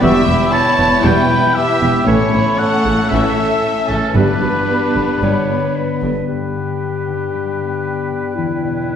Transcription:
Already playing: harp G3 B3
0.00 double bass section E1, cello section E2, harp E2, french horn section G3 B3, viola section G3 B3, violin section B3 E4 E5, trumpet G4, oboe E5, flute C#6
0.26 double bass section E1, cello section E2, viola section F#3, harp G3, flute B5
0.52 harp B3, trumpet C#5, violin section A5, oboe A5
0.78 double bass section E1, cello section E2, viola section E3, harp E4
1.02 double bass section E1, cello section E2, french horn section G3 B3, viola section G3, trumpet B4, violin section G5, oboe G5, flute C#6
1.06 harp B2
1.29 harp G3, flute B5
1.54 harp B3, trumpet G4, oboe E5, violin section E5, flute A5
1.81 double bass section E1, cello section E2, viola section E3, harp E4, flute G5
2.04 double bass section A1, cello section A2, harp A2, viola section E3 A3, french horn section A3 C#4, violin section C#4 C#5, trumpet E4, oboe C#5, flute A5
2.32 double bass section A1, cello section A2, viola section D3, harp A3, flute B5
2.58 harp C#4, trumpet A4, oboe F#5, violin section F#5, flute C#6
2.84 double bass section A1, cello section A2, viola section C#3, harp E4
3.09 double bass section A1, cello section A2, viola section E3, harp E3, french horn section A3 C#4, trumpet A4, oboe E5, violin section E5, flute C#6
3.37 harp A3, flute A5
3.64 harp C#4
3.88 double bass section A1, cello section A2, viola section C#3, trumpet C#4, harp E4, oboe A4, violin section A4
4.14 double bass section G1, cello section G2, harp G2, french horn section G3 D4, viola section G3 B3, violin section B3 D4 B4, trumpet D4, oboe B4, flute B5
4.41 double bass section G1, cello section G2, viola section F#3, harp B3
4.69 harp D4, clarinet G4
4.95 double bass section G1, cello section G2, viola section D3, harp G4
5.21 double bass section G1, cello section G2, harp D3, french horn section G3 D4, viola section G3, clarinet C#5
5.49 harp B3
5.75 harp D4, clarinet B4
6.02 double bass section G1, cello section G2, viola section D3, harp G4
6.27 harp G2, clarinet G4, oboe B4, flute G5
6.56 harp D3
6.82 harp D4
7.08 harp D3
7.34 harp G2
7.61 harp B3
7.86 harp D4
8.12 harp D3
8.35 harp E2, clarinet E4
8.63 harp B2
8.88 harp E4

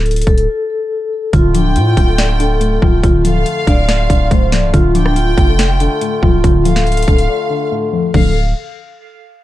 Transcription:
Already playing: 808-style bass D1, vibraphone A4
0.06 closed hi-hat
0.11 closed hi-hat
0.16 closed hi-hat
0.21 closed hi-hat
0.27 808-style bass D1, vibraphone A4, kick
0.38 closed hi-hat
1.33 808-style bass D1, harmonium D3 A3 F4, synth pluck D3, vibraphone F4, kick, closed hi-hat
1.54 synth pluck F3, vibraphone D4, violin section G5, closed hi-hat
1.76 808-style bass A2, vibraphone F4, closed hi-hat
1.97 808-style bass D1, synth pluck D4, kick, closed hi-hat
2.08 vibraphone A4
2.18 synth pluck D5, snare, closed hi-hat
2.39 synth pluck D4, vibraphone A4, closed hi-hat
2.61 synth pluck A3, closed hi-hat
2.82 808-style bass D1, synth pluck F3, vibraphone F4, kick
3.03 808-style bass D1, synth pluck D3, vibraphone F4, kick, closed hi-hat
3.25 synth pluck F3, vibraphone A4, violin section F5, closed hi-hat
3.46 closed hi-hat
3.67 808-style bass D1, synth pluck D4, vibraphone D5, kick, closed hi-hat
3.88 synth pluck D5, snare, closed hi-hat
4.10 808-style bass D1, synth pluck D4, kick, closed hi-hat
4.31 808-style bass D1, synth pluck A3, vibraphone C5, kick, closed hi-hat
4.52 synth pluck F3, vibraphone D5, snare, closed hi-hat
4.63 808-style bass C1
4.74 808-style bass D1, synth pluck D3, vibraphone F4, harmonium F4, kick, closed hi-hat
4.95 synth pluck F3, vibraphone D4, violin section G5, closed hi-hat
5.06 cross-stick
5.16 vibraphone F4, closed hi-hat
5.38 808-style bass F1, synth pluck D4, kick, closed hi-hat
5.48 vibraphone A4
5.59 synth pluck D5, snare, closed hi-hat
5.80 synth pluck D4, vibraphone A4, closed hi-hat
6.01 synth pluck A3, closed hi-hat
6.23 808-style bass D1, synth pluck F3, vibraphone F4, kick
6.44 808-style bass D1, synth pluck D3, vibraphone F4, kick, closed hi-hat
6.65 synth pluck F3, vibraphone A4, violin section F5, closed hi-hat
6.76 snare
6.87 closed hi-hat
6.92 closed hi-hat
6.97 closed hi-hat
7.03 closed hi-hat
7.08 808-style bass D1, synth pluck D4, vibraphone A4, kick, closed hi-hat
7.18 closed hi-hat
7.29 synth pluck D5
7.50 synth pluck D4
7.72 synth pluck A3
7.93 synth pluck F3
8.14 808-style bass D1, harmonium D3 A3 F4, synth pluck D3 F3 A3 D4, vibraphone A4, violin section F5, kick, crash

